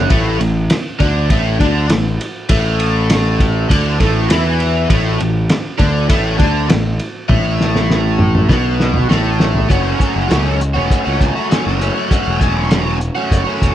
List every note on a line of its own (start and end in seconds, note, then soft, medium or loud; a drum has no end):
0.10 0.38 A1 medium
0.10 0.39 A2 medium
0.10 0.39 A3 loud
0.10 kick loud
0.10 ride medium
0.40 0.68 A1 medium
0.40 0.64 A2 medium
0.40 ride medium
0.70 snare loud
0.70 ride medium
0.99 1.28 D2 medium
0.99 1.29 D3 medium
0.99 1.29 D4 loud
0.99 kick medium
0.99 snare soft
0.99 ride medium
1.30 1.58 A1 medium
1.30 1.58 A2 medium
1.30 1.59 A3 loud
1.30 kick medium
1.30 ride medium
1.59 1.88 D2 loud
1.59 1.88 D3 loud
1.59 1.89 D4 loud
1.59 kick medium
1.59 snare soft
1.59 ride medium
1.89 2.17 A1 medium
1.89 2.13 A2 medium
1.89 snare loud
1.89 ride loud
2.21 ride medium
2.49 3.66 A1 medium
2.49 3.68 A2 loud
2.49 3.68 A3 loud
2.49 kick loud
2.49 ride loud
2.80 ride medium
3.10 snare loud
3.10 ride loud
3.40 kick medium
3.40 ride medium
3.69 3.98 D2 medium
3.69 3.98 D3 medium
3.69 3.99 D4 loud
3.69 kick medium
3.69 ride loud
3.99 4.28 A1 loud
3.99 4.28 A2 medium
3.99 4.29 A3 loud
3.99 kick medium
3.99 snare soft
3.99 ride medium
4.30 4.86 E2 medium
4.30 4.89 E3 medium
4.30 4.89 E4 loud
4.30 snare loud
4.30 ride loud
4.60 ride medium
4.89 5.18 A1 loud
4.89 5.18 A2 loud
4.89 5.19 A3 loud
4.89 kick loud
4.89 ride loud
5.19 5.48 A1 medium
5.19 5.43 A2 medium
5.19 ride medium
5.49 snare loud
5.49 ride medium
5.78 6.08 D2 loud
5.78 6.08 D3 medium
5.78 6.08 D4 medium
5.78 kick medium
5.78 snare soft
5.78 ride medium
6.09 6.37 A1 loud
6.09 6.38 A2 medium
6.09 6.38 A3 medium
6.09 kick medium
6.09 ride loud
6.38 6.67 D2 medium
6.38 6.68 D3 medium
6.38 6.68 D4 loud
6.38 kick medium
6.38 snare soft
6.38 ride medium
6.69 6.98 A1 medium
6.69 6.93 A2 medium
6.69 snare loud
6.69 ride loud
7.00 ride medium
7.28 8.46 A1 loud
7.28 8.48 A2 loud
7.28 8.48 A3 loud
7.28 kick loud
7.28 high tom medium
7.61 snare medium
7.76 snare medium
7.90 snare medium
8.19 mid tom medium
8.35 mid tom medium
8.49 9.05 B1 medium
8.49 9.08 B2 medium
8.49 9.09 B3 medium
8.49 kick medium
8.49 snare medium
8.80 snare medium
8.94 mid tom medium
9.09 9.66 A1 loud
9.09 9.68 A2 medium
9.09 9.68 A3 loud
9.09 snare loud
9.40 snare loud
9.55 floor tom medium
9.69 9.94 F#1 medium
9.69 9.98 F#3 medium
9.69 9.99 A3 medium
9.69 10.00 C#4 medium
9.69 10.01 F#4 medium
9.69 kick loud
9.69 closed hi-hat medium
9.98 10.28 F#3 medium
9.98 10.29 A3 medium
9.98 10.30 C#4 medium
9.98 10.31 F#4 medium
9.98 kick medium
9.98 closed hi-hat medium
10.16 10.27 F#1 medium
10.28 10.77 C#2 loud
10.28 10.60 F#3 medium
10.28 10.46 A3 medium
10.28 10.45 C#4 loud
10.28 10.44 F#4 loud
10.28 snare loud
10.28 closed hi-hat medium
10.44 10.60 A3 medium
10.44 10.61 C#4 medium
10.44 10.61 F#4 medium
10.61 muted overdriven electric guitar stroke soft
10.61 closed hi-hat medium
10.74 10.87 E1 medium
10.74 11.07 A3 medium
10.74 11.05 C#4 medium
10.74 11.04 F#4 medium
10.91 kick medium
10.91 closed hi-hat medium
11.05 11.30 C#2 medium
11.05 11.37 A3 medium
11.05 11.36 C#4 medium
11.05 11.35 F#4 medium
11.21 kick medium
11.21 closed hi-hat medium
11.35 11.49 A3 medium
11.35 11.51 C#4 medium
11.35 11.51 F#4 medium
11.49 11.79 F#3 medium
11.49 11.68 A3 medium
11.49 11.66 C#4 medium
11.49 11.64 F#4 loud
11.49 snare loud
11.49 closed hi-hat medium
11.65 11.90 F#1 medium
11.65 11.80 A3 medium
11.65 11.81 C#4 medium
11.65 11.82 F#4 medium
11.65 snare soft
11.80 12.09 F#3 medium
11.80 11.96 A3 medium
11.80 11.95 C#4 medium
11.80 11.93 F#4 medium
11.80 closed hi-hat medium
11.93 12.10 A3 medium
11.93 12.11 C#4 medium
11.93 12.12 F#4 medium
12.10 12.39 F#3 medium
12.10 12.40 A3 medium
12.10 12.41 C#4 medium
12.10 12.42 F#4 loud
12.10 kick loud
12.10 closed hi-hat medium
12.28 13.09 E1 medium
12.39 12.70 F#3 medium
12.39 12.70 A3 medium
12.39 12.71 C#4 medium
12.39 12.72 F#4 medium
12.39 kick medium
12.39 closed hi-hat medium
12.70 13.00 F#3 medium
12.70 12.86 A3 loud
12.70 12.85 C#4 medium
12.70 12.84 F#4 loud
12.70 snare loud
12.70 closed hi-hat medium
12.85 12.99 A3 medium
12.85 13.00 C#4 medium
12.85 13.00 F#4 medium
13.00 muted overdriven electric guitar stroke soft
13.00 closed hi-hat medium
13.15 13.46 A3 soft
13.15 13.46 C#4 soft
13.15 13.44 F#4 medium
13.31 13.43 F#1 medium
13.31 kick medium
13.31 closed hi-hat medium
13.44 13.75 A3 medium
13.44 13.75 C#4 medium
13.44 13.75 F#4 medium
13.62 13.74 E1 medium
13.62 kick medium
13.62 closed hi-hat medium